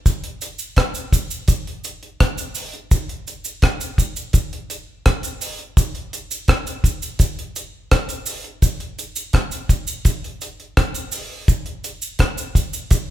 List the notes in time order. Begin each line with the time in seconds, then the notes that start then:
0.06 kick, closed hi-hat, cabasa
0.24 closed hi-hat
0.41 closed hi-hat, cabasa
0.59 cabasa
0.76 kick, cross-stick, closed hi-hat
0.94 closed hi-hat, cabasa
1.13 kick, closed hi-hat, cabasa
1.31 cabasa
1.48 kick, closed hi-hat, cabasa
1.67 closed hi-hat
1.84 closed hi-hat, cabasa
2.03 closed hi-hat
2.20 kick, cross-stick, closed hi-hat
2.38 closed hi-hat, cabasa
2.55 open hi-hat, cabasa
2.74 closed hi-hat
2.91 kick, closed hi-hat, cabasa
3.09 closed hi-hat
3.27 closed hi-hat, cabasa
3.45 closed hi-hat, cabasa
3.62 kick, cross-stick, closed hi-hat
3.81 closed hi-hat, cabasa
3.98 kick, closed hi-hat, cabasa
4.16 closed hi-hat, cabasa
4.33 kick, closed hi-hat, cabasa
4.53 closed hi-hat
4.70 closed hi-hat, cabasa
5.06 kick, cross-stick, closed hi-hat
5.23 closed hi-hat, cabasa
5.41 open hi-hat, cabasa
5.59 closed hi-hat
5.77 kick, closed hi-hat, cabasa
5.95 closed hi-hat
6.13 closed hi-hat, cabasa
6.31 closed hi-hat, cabasa
6.48 kick, cross-stick, closed hi-hat
6.67 closed hi-hat, cabasa
6.84 kick, closed hi-hat, cabasa
7.02 closed hi-hat, cabasa
7.19 kick, closed hi-hat, cabasa
7.39 closed hi-hat
7.56 closed hi-hat, cabasa
7.91 kick, cross-stick, closed hi-hat
8.09 closed hi-hat, cabasa
8.26 open hi-hat, cabasa
8.44 closed hi-hat
8.62 kick, closed hi-hat, cabasa
8.80 closed hi-hat
8.99 closed hi-hat, cabasa
9.16 closed hi-hat, cabasa
9.33 kick, cross-stick, closed hi-hat
9.51 closed hi-hat, cabasa
9.69 kick, closed hi-hat, cabasa
9.87 closed hi-hat, cabasa
10.05 kick, closed hi-hat, cabasa
10.24 closed hi-hat
10.41 closed hi-hat, cabasa
10.60 closed hi-hat
10.77 kick, cross-stick, closed hi-hat
10.94 closed hi-hat, cabasa
11.12 open hi-hat, cabasa
11.48 kick, closed hi-hat, cabasa
11.66 closed hi-hat
11.84 closed hi-hat, cabasa
12.02 cabasa
12.19 kick, cross-stick, closed hi-hat
12.38 closed hi-hat, cabasa
12.55 kick, closed hi-hat, cabasa
12.73 closed hi-hat, cabasa
12.91 kick, closed hi-hat, cabasa